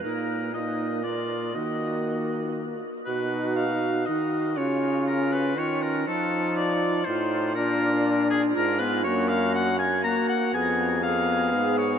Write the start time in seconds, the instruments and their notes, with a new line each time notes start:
0.04 trombone A#2 A#3, recorder D#4, oboe A#4
0.54 trombone A#3, recorder F4, oboe D#5
0.59 recorder D#4
1.03 trombone A#3, recorder F4, oboe D5
1.55 trombone D#3 A#3, recorder F#4, oboe D#5
3.06 trombone B2 D#4, recorder F#4, oboe B4
3.56 oboe F5
4.06 trombone D#3 D#4, recorder F#4, oboe D#5
4.57 trombone C#3 C#4, recorder F4, oboe C#5
5.07 oboe A#4
5.32 oboe B4
5.57 trombone D#3 C#4, recorder F4, oboe C#5
5.82 oboe A#4
6.07 trombone F3 D#4, recorder F4, oboe A4
6.57 oboe D5
7.05 trombone A2 D#4, recorder F4, oboe C5
7.55 trombone A#2 D4, recorder F4, oboe A#4
8.30 oboe G#4
8.55 trombone G#2 D4, recorder F4, oboe A#4
8.79 trombone B3, oboe B4
9.04 trombone F#2 A#3, recorder F#4, oboe C#5
9.29 oboe F5
9.55 oboe F#5
9.79 oboe G#5
10.04 trombone A#3, recorder F#4, oboe A#5
10.29 oboe F#5
10.54 trombone F2 B3, recorder G#4, oboe G#5
11.03 trombone B3, recorder G#4, oboe F5
11.53 trombone G#2
11.78 oboe C#5